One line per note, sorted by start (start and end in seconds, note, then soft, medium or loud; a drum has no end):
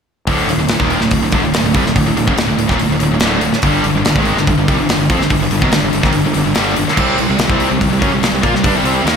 0.27 0.47 D1 medium
0.27 0.47 D2 medium
0.27 0.48 A2 medium
0.27 0.49 D3 loud
0.27 kick loud
0.27 open hi-hat medium
0.48 0.57 D1 medium
0.48 0.58 D2 medium
0.48 0.58 A2 medium
0.48 open hi-hat medium
0.58 0.68 D1 medium
0.58 0.68 D2 medium
0.58 0.69 A2 medium
0.69 0.79 D1 medium
0.69 0.80 D2 medium
0.69 0.80 A2 medium
0.69 snare loud
0.69 open hi-hat medium
0.80 1.00 D#1 medium
0.80 1.01 D#2 medium
0.80 1.01 A#2 medium
0.80 1.01 D#3 medium
0.80 kick loud
0.90 open hi-hat medium
1.00 1.11 D1 medium
1.00 1.12 D2 medium
1.00 1.12 A2 medium
1.00 snare soft
1.11 1.21 D1 medium
1.11 1.23 D2 medium
1.11 1.23 A2 medium
1.11 kick medium
1.11 open hi-hat medium
1.21 1.32 D1 medium
1.21 1.33 D2 medium
1.21 1.34 A2 medium
1.32 1.41 G1 medium
1.32 1.43 G2 medium
1.32 1.44 D3 medium
1.32 kick loud
1.32 open hi-hat medium
1.41 1.52 D1 medium
1.41 1.54 D2 medium
1.41 1.54 A2 medium
1.52 1.63 D1 medium
1.52 1.64 D2 medium
1.52 1.65 A2 medium
1.52 snare loud
1.52 open hi-hat medium
1.64 1.74 D1 medium
1.64 1.74 D2 medium
1.64 1.75 A2 medium
1.74 1.83 C2 medium
1.74 1.85 C3 medium
1.74 1.85 G3 medium
1.74 kick loud
1.74 open hi-hat medium
1.84 1.95 D1 medium
1.84 1.95 D2 medium
1.84 1.96 A2 medium
1.84 snare soft
1.96 2.05 D1 medium
1.96 2.05 D2 medium
1.96 2.06 A2 medium
1.96 kick medium
1.96 open hi-hat medium
2.05 2.15 D1 medium
2.05 2.15 D2 medium
2.05 2.16 A2 medium
2.16 2.26 D1 medium
2.16 2.26 D2 medium
2.16 2.27 A2 medium
2.16 open hi-hat medium
2.27 2.36 F#1 loud
2.27 2.35 F#2 medium
2.27 2.36 C#3 loud
2.27 kick loud
2.36 2.47 D1 medium
2.36 2.47 D2 medium
2.36 2.47 A2 medium
2.36 snare loud
2.36 open hi-hat medium
2.48 2.57 D1 medium
2.48 2.56 D2 medium
2.48 2.57 A2 medium
2.57 2.68 D1 medium
2.57 2.67 D2 medium
2.57 2.68 A2 medium
2.57 open hi-hat medium
2.68 2.79 D#1 loud
2.68 2.78 D#2 medium
2.68 2.79 A#2 loud
2.68 kick loud
2.68 snare soft
2.79 2.89 D1 medium
2.79 2.88 D2 medium
2.79 2.88 A2 medium
2.79 open hi-hat medium
2.89 3.00 D1 medium
2.89 2.98 D2 medium
2.89 2.99 A2 medium
2.99 3.10 D1 medium
2.99 3.10 D2 medium
2.99 3.11 A2 medium
2.99 open hi-hat medium
3.11 3.21 D1 medium
3.11 3.20 D2 medium
3.11 3.21 A2 medium
3.20 3.41 D1 medium
3.20 3.41 D2 medium
3.20 3.42 A2 loud
3.20 3.43 D3 loud
3.20 snare loud
3.20 open hi-hat medium
3.41 3.52 D1 medium
3.41 3.51 D2 medium
3.41 3.53 A2 medium
3.41 open hi-hat medium
3.52 muted distorted electric guitar stroke medium
3.52 muted fingered electric bass stroke soft
3.52 snare soft
3.62 3.83 G1 medium
3.62 3.84 G2 medium
3.62 3.84 D3 medium
3.62 3.85 G3 loud
3.62 kick loud
3.62 open hi-hat medium
3.84 3.93 G1 medium
3.84 3.94 G2 medium
3.84 3.95 D3 medium
3.84 open hi-hat medium
3.94 4.04 G1 medium
3.94 4.05 G2 medium
3.94 4.05 D3 medium
4.05 4.15 G1 medium
4.05 4.16 G2 medium
4.05 4.16 D3 medium
4.05 snare loud
4.05 open hi-hat medium
4.15 4.35 G#1 medium
4.15 4.36 G#2 medium
4.15 4.37 D#3 medium
4.15 4.37 G#3 medium
4.15 kick loud
4.25 open hi-hat medium
4.36 4.46 G1 medium
4.36 4.47 G2 medium
4.36 4.48 D3 medium
4.36 snare soft
4.47 4.57 G1 medium
4.47 4.57 G2 medium
4.47 4.56 D3 medium
4.47 kick medium
4.47 open hi-hat medium
4.58 4.67 G1 medium
4.58 4.68 G2 medium
4.58 4.68 D3 medium
4.68 4.78 C2 loud
4.68 4.78 C3 medium
4.68 4.78 G3 loud
4.68 kick loud
4.68 open hi-hat medium
4.78 4.89 G1 medium
4.78 4.88 G2 medium
4.78 4.89 D3 medium
4.89 4.97 G1 medium
4.89 4.99 G2 medium
4.89 4.99 D3 medium
4.89 snare loud
4.89 open hi-hat medium
4.98 5.08 G1 medium
4.98 5.10 G2 medium
4.98 5.09 D3 medium
5.09 5.18 F2 medium
5.09 5.19 F3 medium
5.09 5.20 C4 medium
5.09 kick loud
5.09 open hi-hat medium
5.19 5.29 G1 medium
5.19 5.28 G2 medium
5.19 5.29 D3 medium
5.19 snare soft
5.29 5.39 G1 medium
5.29 5.38 G2 medium
5.29 5.38 D3 medium
5.29 kick medium
5.29 open hi-hat medium
5.39 5.50 G1 medium
5.39 5.50 G2 medium
5.39 5.50 D3 medium
5.51 5.61 G1 medium
5.51 5.61 G2 medium
5.51 5.62 D3 medium
5.51 open hi-hat medium
5.61 5.72 B1 loud
5.61 5.71 B2 medium
5.61 5.70 F#3 loud
5.61 kick medium
5.71 5.82 G1 medium
5.71 5.79 G2 medium
5.71 5.79 D3 medium
5.71 snare loud
5.71 open hi-hat medium
5.80 5.93 G1 medium
5.80 5.90 G2 medium
5.80 5.90 D3 medium
5.85 5.93 G2 medium
5.85 5.94 D3 medium
5.91 6.03 G1 medium
5.91 6.01 G2 medium
5.91 6.02 D3 medium
5.91 open hi-hat medium
6.01 6.14 G#1 medium
6.01 6.11 G#2 medium
6.01 6.11 D#3 medium
6.01 kick loud
6.01 snare soft
6.05 6.15 G#2 medium
6.11 6.24 G1 medium
6.11 6.23 G2 medium
6.11 6.23 D3 medium
6.11 open hi-hat medium
6.16 6.25 G2 medium
6.16 6.25 D3 medium
6.24 6.34 G1 medium
6.24 6.32 G2 medium
6.24 6.33 D3 medium
6.33 6.45 G1 medium
6.33 6.43 G2 medium
6.33 6.44 D3 medium
6.33 open hi-hat medium
6.44 6.55 G1 medium
6.44 6.53 G2 medium
6.44 6.54 D3 medium
6.54 6.76 G1 medium
6.54 6.74 G2 medium
6.54 6.75 D3 medium
6.54 6.76 G3 loud
6.54 snare loud
6.54 open hi-hat medium
6.75 6.87 G1 medium
6.75 6.85 G2 medium
6.75 6.87 D3 medium
6.75 open hi-hat medium
6.87 muted distorted electric guitar stroke medium
6.87 muted fingered electric bass stroke soft
6.87 snare soft
6.96 7.17 C2 medium
6.96 7.16 C3 medium
6.96 7.16 G3 medium
6.96 7.18 C4 loud
6.96 kick loud
6.96 crash loud
7.17 7.28 C2 medium
7.17 7.27 C3 medium
7.17 7.27 G3 medium
7.17 open hi-hat medium
7.28 7.39 C2 medium
7.28 7.36 C3 medium
7.28 7.37 G3 medium
7.37 7.48 C2 medium
7.37 7.46 C3 medium
7.37 7.47 G3 medium
7.37 snare loud
7.37 open hi-hat medium
7.48 7.69 C2 medium
7.48 7.68 C3 medium
7.48 7.68 G3 medium
7.48 7.70 C4 medium
7.48 kick loud
7.60 open hi-hat medium
7.69 7.81 C2 medium
7.69 7.78 C3 medium
7.69 7.78 G3 medium
7.79 7.90 C2 medium
7.79 7.88 C3 medium
7.79 7.89 G3 medium
7.79 kick medium
7.79 open hi-hat medium
7.90 8.01 C2 medium
7.90 8.01 C3 medium
7.90 7.99 G3 medium
7.99 8.10 F#2 medium
7.99 8.10 F#3 medium
7.99 8.10 C#4 medium
7.99 kick loud
7.99 open hi-hat medium
8.04 8.12 C#4 medium
8.10 8.21 C2 medium
8.10 8.19 C3 medium
8.10 8.20 G3 medium
8.15 8.24 G3 medium
8.20 8.32 C2 medium
8.20 8.30 C3 medium
8.20 8.31 G3 medium
8.20 snare loud
8.20 open hi-hat medium
8.25 8.33 C3 medium
8.31 8.42 C2 medium
8.31 8.43 C3 medium
8.31 8.43 G3 medium
8.42 8.53 A#2 medium
8.42 8.52 A#3 medium
8.42 8.53 F4 medium
8.42 kick loud
8.42 open hi-hat medium
8.53 8.63 C2 medium
8.53 8.64 C3 medium
8.53 8.62 G3 medium
8.53 snare soft
8.63 8.73 G2 medium
8.63 8.73 G3 medium
8.63 8.73 D4 loud
8.63 kick loud
8.63 open hi-hat medium
8.73 8.82 C2 medium
8.73 8.83 C3 medium
8.73 8.84 G3 loud
8.83 9.03 C2 medium
8.83 9.05 C3 medium
8.83 9.05 G3 medium
8.83 9.05 C4 medium
8.83 open hi-hat medium
9.05 9.16 D#2 medium
9.05 9.16 D#3 medium
9.05 9.16 A#3 medium
9.05 9.16 D#4 medium
9.05 snare loud
9.05 open hi-hat medium